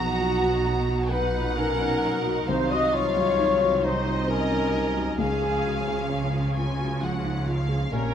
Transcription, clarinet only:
0.00 1.12 B3 medium
1.11 1.59 D#4 medium
1.58 2.21 C#4 medium
2.49 2.73 D#4 medium
2.72 2.95 F#4 medium
2.93 3.86 F4 medium
3.85 4.30 D#4 medium
4.31 5.19 C#4 medium
5.20 6.54 C#4 medium
7.92 8.14 C#4 medium

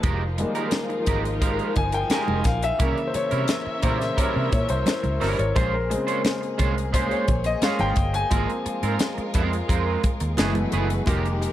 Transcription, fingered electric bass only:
0.04 0.43 F1 medium
1.08 1.60 G#1 medium
1.77 2.03 G1 medium
2.29 2.42 F1 medium
2.45 2.71 A#1 medium
2.80 2.93 C2 loud
3.15 muted fingered electric bass stroke soft
3.32 3.45 C3 medium
3.67 muted fingered electric bass stroke soft
3.84 4.10 A#2 medium
4.36 4.49 C3 medium
4.53 4.66 A#2 medium
4.70 4.83 C2 medium
5.05 5.18 C#2 medium
5.22 5.35 G1 medium
5.39 5.52 G#1 medium
5.56 5.95 A#1 medium
6.60 7.12 C2 medium
7.29 7.55 A#1 medium
7.81 7.93 G#1 medium
7.97 8.23 G1 medium
8.32 8.45 G#1 medium
8.66 muted fingered electric bass stroke soft
8.83 8.96 G#2 medium
9.18 muted fingered electric bass stroke soft
9.35 9.61 F2 medium
9.70 9.96 F2 loud
10.21 10.34 D#2 medium
10.39 10.65 F#1 medium
10.73 10.99 F#1 medium
11.07 11.46 F1 medium

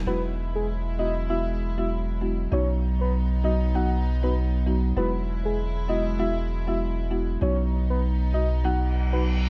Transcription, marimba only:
0.07 0.93 G#3 medium
0.07 0.93 B3 medium
0.07 0.93 E4 medium
0.07 0.93 F#4 loud
0.99 1.27 G#3 medium
0.99 1.27 B3 medium
0.99 1.27 E4 medium
0.99 1.28 F#4 medium
1.29 1.73 G#3 medium
1.29 1.74 B3 medium
1.29 1.74 E4 medium
1.29 1.74 F#4 loud
1.78 2.18 G#3 medium
1.78 2.18 B3 medium
1.78 2.18 E4 medium
1.78 2.18 F#4 medium
2.21 2.50 G#3 medium
2.21 2.50 B3 medium
2.21 2.50 E4 medium
2.21 2.50 F#4 medium
2.52 3.37 F#3 medium
2.52 3.38 B3 medium
2.52 3.38 D#4 medium
2.52 3.38 F#4 loud
3.44 3.72 F#3 medium
3.44 3.72 B3 medium
3.44 3.72 D#4 medium
3.44 3.72 F#4 medium
3.75 4.19 F#3 medium
3.75 4.19 B3 medium
3.75 4.19 D#4 medium
3.75 4.19 F#4 loud
4.23 4.44 F#3 medium
4.23 4.44 B3 medium
4.23 4.44 D#4 medium
4.23 4.44 F#4 medium
4.66 4.90 F#3 medium
4.66 4.90 B3 medium
4.66 4.90 D#4 medium
4.66 4.90 F#4 medium
4.97 5.82 G#3 medium
4.97 5.83 B3 medium
4.97 5.83 E4 medium
4.97 5.83 F#4 loud
5.88 6.17 G#3 medium
5.88 6.17 B3 medium
5.88 6.17 E4 medium
5.88 6.17 F#4 medium
6.19 6.63 G#3 medium
6.19 6.63 B3 medium
6.19 6.63 E4 medium
6.19 6.64 F#4 loud
6.67 7.08 G#3 medium
6.67 7.08 B3 medium
6.67 7.08 E4 medium
6.67 7.08 F#4 medium
7.10 7.39 G#3 medium
7.10 7.39 B3 medium
7.10 7.40 E4 medium
7.10 7.40 F#4 medium
7.41 8.27 F#3 medium
7.41 8.27 B3 medium
7.41 8.27 D#4 medium
7.41 8.27 F#4 loud
8.34 8.62 F#3 medium
8.34 8.62 B3 medium
8.34 8.62 D#4 medium
8.34 8.62 F#4 medium
8.64 9.08 F#3 medium
8.64 9.08 B3 medium
8.64 9.08 D#4 medium
8.64 9.09 F#4 loud
9.13 9.34 F#3 medium
9.13 9.34 B3 medium
9.13 9.34 D#4 medium
9.13 9.34 F#4 medium

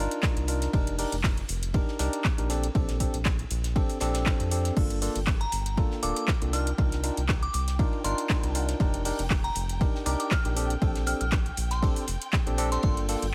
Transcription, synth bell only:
5.41 5.58 A#5 medium
6.03 6.12 D6 medium
6.16 6.24 D6 medium
6.53 6.72 F6 medium
7.43 7.50 D6 medium
7.54 7.63 D6 medium
8.04 8.55 C6 medium
9.44 9.62 A#5 medium
10.06 10.15 D6 medium
10.20 10.27 D6 medium
10.31 10.50 F6 medium
11.07 11.16 F6 medium
11.21 11.28 F6 medium
11.71 12.22 C6 medium
12.72 12.79 C6 medium
12.83 12.92 C6 medium

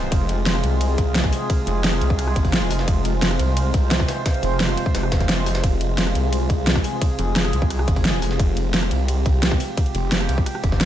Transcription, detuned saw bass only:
0.00 0.11 F1 loud
0.12 0.28 F1 loud
0.29 0.62 F1 loud
0.64 0.97 C2 loud
0.98 1.31 C2 loud
1.67 2.00 F1 loud
2.02 2.35 C2 loud
2.36 2.69 G#1 loud
2.71 2.86 F1 loud
2.88 3.04 F1 loud
3.05 3.38 F1 loud
3.40 3.73 C2 loud
3.74 4.07 C2 loud
4.43 4.76 F1 loud
4.95 5.28 F1 loud
5.29 5.62 F1 loud
5.64 5.79 F1 loud
5.81 6.14 F1 loud
6.15 6.48 C2 loud
6.50 6.83 C2 loud
7.19 7.52 F1 loud
7.53 7.86 C2 loud
7.88 8.21 G#1 loud
8.22 8.38 F1 loud
8.40 8.55 F1 loud
8.57 8.90 F1 loud
8.91 9.24 C2 loud
9.26 9.59 C2 loud
9.95 10.28 F1 medium
10.29 10.45 C2 loud
10.64 10.85 F1 loud

